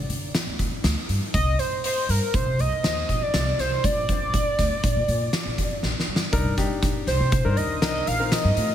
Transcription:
0.09 D3, closed hi-hat
0.35 snare, closed hi-hat
0.47 D2
0.59 kick, closed hi-hat
0.84 D2, snare, closed hi-hat
1.09 G2, closed hi-hat
1.34 C2 D#5, kick, closed hi-hat
1.59 C5, closed hi-hat
1.84 C5, closed hi-hat
2.09 G2 A#4, closed hi-hat
2.34 C3 C5, kick, closed hi-hat
2.46 C3
2.59 C2 D#5, closed hi-hat
2.83 D#2, snare, closed hi-hat
3.09 A#1, kick, closed hi-hat
3.22 D5
3.34 C2, snare, closed hi-hat
3.59 C2 C5, snare, closed hi-hat
3.84 A#1 D5, kick, closed hi-hat
4.09 kick, closed hi-hat
4.34 kick, closed hi-hat
4.59 D2, kick, snare, closed hi-hat
4.84 A1, kick, closed hi-hat
4.96 A#2
5.08 A#2, closed hi-hat
5.33 snare, closed hi-hat
5.45 A#1
5.58 kick, closed hi-hat
5.83 A#1, snare
6.00 snare
6.08 G2
6.16 snare
6.32 C2 D4 D#4 A#4, kick, closed hi-hat
6.45 G2
6.58 D4 D#4 G4, kick, snare, closed hi-hat
6.82 kick, snare, closed hi-hat
7.07 C2 C5, snare, closed hi-hat
7.20 C3
7.32 kick, closed hi-hat
7.45 G2 D4 D#4 A#4
7.57 D#2 D#5, closed hi-hat
7.82 C2 D4 D#4 A#4 D#5, snare, closed hi-hat
8.07 A#1 F5, closed hi-hat
8.19 C4 D#4 A#4
8.32 D#5, snare, closed hi-hat
8.44 G2
8.57 A2, closed hi-hat

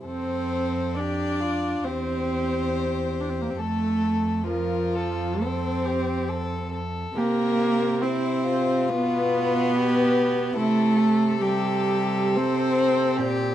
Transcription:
0.06 F2 C4 A4 C5
0.94 D4 D5
0.99 G4
1.41 F4
1.84 E2 C4 G4 C5
3.21 D4
3.30 C4
3.41 A#3
3.50 C4
3.56 F2 A4
3.60 A3
4.44 F3 F4 A#4
4.95 A4
5.40 A4 C5
5.44 C4
5.85 G4
6.29 A4
6.72 A4
7.14 C3 A#3 G4 A#4
8.02 C4 E4 C5
8.44 F4
8.89 B2 B3 B4
9.73 G4
10.56 C3 A3 E4 A4
10.97 A4
11.41 G3 G4
12.36 C4 C5
13.17 A#2 G4

